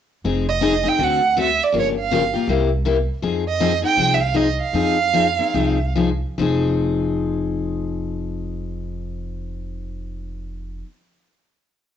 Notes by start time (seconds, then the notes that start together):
0.24 F1 F3 C4 D#4 G#4
0.49 D#5
0.61 F3 C4 D#4 G#4
0.84 C4 D#4 G#4
0.89 G5
0.98 D2 D3 A3 C4 F#4 A4
1.03 F#5
1.36 D3 A3 C4 F#4 A4
1.41 E5
1.64 D5
1.72 G1 C#3 F3 A#3 F4 G4
1.79 C#5
2.00 F5
2.11 C#3 F3 A#3 F4 G4
2.34 A#3 F4 G4
2.47 C2 C3 G3 A#3 E4 G4
2.85 C3 G3 A#3 E4 G4
3.22 F2 F3 C4 D#4 G#4
3.49 D#5
3.60 F3 C4 D#4 G#4
3.82 C4 D#4 G#4 G5
3.97 C2 F3 C4 D#4 G#4
4.14 E5
4.21 F5
4.34 F3 C4 D#4 G#4 D#5
4.61 F5
4.73 F2 F3 C4 D#4 G#4
5.13 F3 C4 D#4 G#4
5.39 C4 D#4 G#4
5.54 C2 F3 C4 D#4 G#4
5.96 F3 C4 D#4 G#4
6.38 F1 F3 C4 D#4 G#4